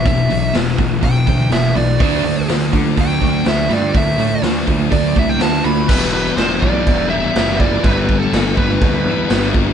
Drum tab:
CC |--------|--------|--------|x-x-x-x-|
HH |oooooooo|oooooooo|oooooooo|--------|
SD |--o---o-|--o---o-|--o---o-|--o---o-|
BD |o--ooo--|o--ooo--|o--ooo--|o--oo--o|

CC |x-x-x-x-|
HH |--------|
SD |--o---o-|
BD |oo-oo--o|